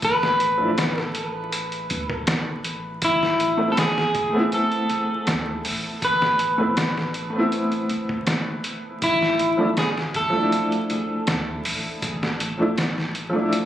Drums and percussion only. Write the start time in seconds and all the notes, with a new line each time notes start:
0.02 kick, closed hi-hat
0.23 snare
0.40 closed hi-hat
0.78 snare, closed hi-hat
0.98 snare
1.15 closed hi-hat
1.52 closed hi-hat
1.72 closed hi-hat
1.90 closed hi-hat
2.10 kick
2.27 snare, closed hi-hat
2.64 closed hi-hat
3.02 kick, closed hi-hat
3.23 snare
3.40 closed hi-hat
3.77 snare, closed hi-hat
3.98 snare
4.15 kick, closed hi-hat
4.52 closed hi-hat
4.72 closed hi-hat
4.89 closed hi-hat
5.27 snare, closed hi-hat
5.65 open hi-hat
6.02 kick, closed hi-hat
6.22 snare
6.39 closed hi-hat
6.77 snare, closed hi-hat
6.97 snare
7.14 closed hi-hat
7.52 closed hi-hat
7.72 closed hi-hat
7.90 closed hi-hat
8.09 kick
8.27 snare, closed hi-hat
8.64 closed hi-hat
9.02 kick, closed hi-hat
9.22 snare
9.39 closed hi-hat
9.77 snare, closed hi-hat
9.98 snare
10.14 kick, closed hi-hat
10.52 closed hi-hat
10.72 closed hi-hat
10.90 closed hi-hat
11.27 snare, closed hi-hat
11.65 open hi-hat
12.02 kick, closed hi-hat
12.23 snare
12.40 closed hi-hat
12.78 snare, closed hi-hat
12.98 snare
13.15 closed hi-hat
13.53 closed hi-hat